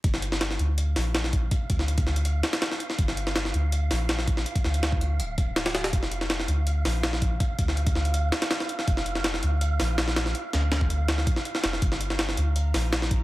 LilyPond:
<<
  \new Staff \with { instrumentName = "Synth texture" } { \time 4/4 \key g \minor \tempo 4 = 163 f''1~ | f''1~ | f''1~ | f''1~ |
f''1~ | f''1~ | f''1~ | f''1 |
bes''1 | }
  \new Staff \with { instrumentName = "Sub bass" } { \clef bass \time 4/4 \key g \minor g,,4. d,4 bes,,4. | r8 d,4 d,4 r4. | g,,4. d,4 bes,,4. | r8 d,4 d,8 d,,2 |
f,,4. d,4 bes,,4. | r8 d,4 d,4 r4. | f,,4. d,4 bes,,4. | r8 d,4 d,4 bes,,8 r8 f,,8 |
g,,4. d,4 bes,,4. | }
  \new DrumStaff \with { instrumentName = "Drums" } \drummode { \time 4/4 <hh bd>16 sn16 hh16 sn16 <hh sn>16 sn16 hh8 hh8 <hho sn>8 <hh sn>16 sn16 <hh bd>8 | <hh bd>8 <hh bd>16 sn16 hh16 <hh bd>16 sn16 hh16 hh8 <hh sn>16 <hh sn>16 <hh sn>16 sn16 hh16 sn16 | <hh bd>16 sn16 hh16 sn16 <hh sn>16 sn16 hh8 hh8 <hho sn>8 <hh sn>16 sn16 <hh bd>16 sn16 | hh16 <hh bd>16 sn16 hh16 <hh sn>16 bd16 hh8 hh8 <hh bd>8 <hh sn>16 <hh sn>16 <hh sn>16 <hh sn>16 |
<hh bd>16 sn16 hh16 sn16 <hh sn>16 sn16 hh8 hh8 <hho sn>8 <hh sn>16 sn16 <hh bd>8 | <hh bd>8 <hh bd>16 sn16 hh16 <hh bd>16 sn16 hh16 hh8 <hh sn>16 <hh sn>16 <hh sn>16 sn16 hh16 sn16 | <hh bd>16 sn16 hh16 sn16 <hh sn>16 sn16 hh8 hh8 <hho sn>8 <hh sn>16 sn16 <hh sn>16 sn16 | hh8 <hh sn>8 <hh sn>16 bd16 hh8 <hh sn>16 sn16 <hh bd>16 sn16 hh16 sn16 <hh sn>16 sn16 |
<hh bd>16 sn16 hh16 sn16 <hh sn>16 sn16 hh8 hh8 <hho sn>8 <hh sn>16 sn16 <hh bd>8 | }
>>